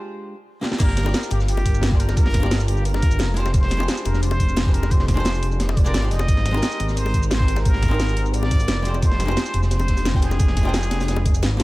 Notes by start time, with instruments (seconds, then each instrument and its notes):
Already playing: hollow-body jazz guitar G#3 D4 F4 G4 C5
0.61 hollow-body jazz guitar A#3 D4 F4 G4 D5, snare
0.72 snare
0.78 detuned saw bass G1, hollow-body jazz guitar A#3 D4 F4 G4 D5, analog synth pad F4 A#4, muted trumpet A#4, kick, closed hi-hat, crash, shaker
0.89 snare
0.97 snare, closed hi-hat, shaker
1.03 hollow-body jazz guitar A#3 D4 F4, high bongo
1.07 hollow-body jazz guitar G4 D5
1.14 snare, closed hi-hat, shaker
1.23 shaker
1.31 detuned saw bass G1, muted trumpet G4, closed hi-hat, high bongo
1.40 snare, shaker
1.48 muted trumpet G4, closed hi-hat, shaker
1.57 closed hi-hat, high bongo
1.66 kick, closed hi-hat, shaker
1.74 shaker
1.81 detuned saw bass G1, snare, closed hi-hat, high bongo, shaker
1.89 hollow-body jazz guitar A#3 D4 F4, kick, snare
1.93 hollow-body jazz guitar G4 D5, muted trumpet C5
2.00 muted trumpet A#4, closed hi-hat
2.09 snare, high bongo, shaker
2.17 muted trumpet A#4, kick, closed hi-hat, shaker
2.26 snare
2.34 kick, snare, closed hi-hat, shaker
2.40 hollow-body jazz guitar A#3 D4 F4, high bongo
2.44 hollow-body jazz guitar G4 D5
2.51 snare, closed hi-hat, shaker
2.60 closed hi-hat, shaker
2.68 detuned saw bass G1, muted trumpet G4, closed hi-hat
2.77 shaker
2.85 muted trumpet A#4, closed hi-hat, shaker
2.94 snare, high bongo
3.02 kick, closed hi-hat, shaker
3.11 closed hi-hat, shaker
3.19 detuned saw bass F1, snare, closed hi-hat, high bongo, shaker
3.34 hollow-body jazz guitar G#3 D4 F4, analog synth pad D4, muted trumpet C5, snare, closed hi-hat
3.39 hollow-body jazz guitar G4 C5
3.46 snare, high bongo, shaker
3.54 detuned saw bass F1, muted trumpet C5, kick, closed hi-hat, shaker
3.63 snare
3.71 snare, closed hi-hat, shaker
3.77 hollow-body jazz guitar G#3 D4 F4, high bongo
3.81 hollow-body jazz guitar G4 C5
3.88 snare, closed hi-hat, shaker
3.97 shaker
4.05 detuned saw bass F1, muted trumpet A#4, closed hi-hat, high bongo
4.14 snare, shaker
4.23 muted trumpet C5, closed hi-hat, shaker
4.31 closed hi-hat, high bongo
4.40 kick, closed hi-hat, shaker
4.49 shaker
4.56 detuned saw bass F1, snare, closed hi-hat, high bongo, shaker
4.63 hollow-body jazz guitar G#3 D4 F4, kick, snare
4.67 hollow-body jazz guitar G4 C5
4.74 muted trumpet A#4, closed hi-hat
4.83 snare, high bongo, shaker
4.91 muted trumpet C5, kick, closed hi-hat, shaker
4.99 snare
5.08 muted trumpet C5, kick, snare, closed hi-hat, shaker
5.14 hollow-body jazz guitar G#3 D4 F4, high bongo
5.18 hollow-body jazz guitar G4 C5
5.25 snare, closed hi-hat, shaker
5.34 closed hi-hat, shaker
5.43 detuned saw bass F1, closed hi-hat
5.52 shaker
5.60 snare, closed hi-hat, shaker
5.69 muted trumpet D#5, snare, high bongo
5.77 muted trumpet D5, kick, closed hi-hat, shaker
5.84 hollow-body jazz guitar G#3 D4 F4 G4 A#4, closed hi-hat, shaker
5.94 detuned saw bass G#1, snare, closed hi-hat, high bongo, shaker
6.02 hollow-body jazz guitar G#3 D4 F4 G4 D5
6.11 detuned saw bass F1, muted trumpet D#5, snare, closed hi-hat
6.19 snare, high bongo, shaker
6.28 detuned saw bass G#1, analog synth pad C4 A#4, kick, closed hi-hat, shaker
6.37 snare
6.45 snare, closed hi-hat, shaker
6.51 hollow-body jazz guitar G#3 C4 D#4, high bongo
6.55 hollow-body jazz guitar G4 A#4
6.62 snare, closed hi-hat, shaker
6.72 shaker
6.80 detuned saw bass G#1, closed hi-hat, high bongo
6.89 snare, shaker
6.97 muted trumpet C5, closed hi-hat, shaker
7.06 closed hi-hat, high bongo
7.14 kick, closed hi-hat, shaker
7.23 shaker
7.31 detuned saw bass G#1, muted trumpet C5, snare, closed hi-hat, high bongo, shaker
7.37 hollow-body jazz guitar G#3 C4 D#4, kick
7.41 hollow-body jazz guitar G4 A#4, snare
7.48 closed hi-hat
7.56 snare, high bongo, shaker
7.65 muted trumpet A#4, kick, closed hi-hat, shaker
7.74 snare
7.83 kick, snare, closed hi-hat, shaker
7.88 hollow-body jazz guitar G#3 C4 D#4, high bongo
7.93 hollow-body jazz guitar G4 A#4
7.99 snare, closed hi-hat, shaker
8.08 closed hi-hat, shaker
8.17 detuned saw bass G#1, closed hi-hat
8.26 shaker
8.33 muted trumpet D5, closed hi-hat, shaker
8.43 snare, high bongo
8.51 kick, closed hi-hat, shaker
8.60 closed hi-hat, shaker
8.68 detuned saw bass F1, snare, closed hi-hat, high bongo, shaker
8.82 hollow-body jazz guitar G#3 D4 F4, analog synth pad D4, snare, closed hi-hat
8.87 hollow-body jazz guitar G4 C5
8.94 high bongo, shaker
9.02 detuned saw bass F1, muted trumpet C5, kick, closed hi-hat, shaker
9.11 snare
9.20 snare, closed hi-hat, shaker
9.25 hollow-body jazz guitar G#3 D4 F4, high bongo
9.30 hollow-body jazz guitar G4 C5
9.37 snare, closed hi-hat, shaker
9.46 shaker
9.53 detuned saw bass F1, closed hi-hat
9.63 snare, shaker
9.71 muted trumpet C5, snare, closed hi-hat, shaker
9.79 closed hi-hat, high bongo
9.88 kick, snare, closed hi-hat, shaker
9.97 snare, closed hi-hat, shaker
10.05 detuned saw bass F1, snare, closed hi-hat, high bongo, shaker
10.11 hollow-body jazz guitar G#3 D4 F4, kick, snare
10.16 hollow-body jazz guitar C5 G5
10.22 muted trumpet G#4, snare, closed hi-hat
10.31 snare, high bongo, shaker
10.39 kick, closed hi-hat, shaker
10.48 snare
10.57 kick, snare, closed hi-hat, shaker
10.63 hollow-body jazz guitar G#3 D4 F4, high bongo
10.67 hollow-body jazz guitar C5 G5
10.74 snare, closed hi-hat, shaker
10.83 closed hi-hat, shaker
10.91 detuned saw bass F1, snare, closed hi-hat, high bongo
11.00 snare, closed hi-hat, shaker
11.08 snare, closed hi-hat, shaker
11.16 high bongo
11.25 kick, closed hi-hat, shaker
11.34 closed hi-hat, shaker
11.43 detuned saw bass G#1, snare, closed hi-hat, high bongo, shaker
11.57 hollow-body jazz guitar A#3 D4 F4, snare, closed hi-hat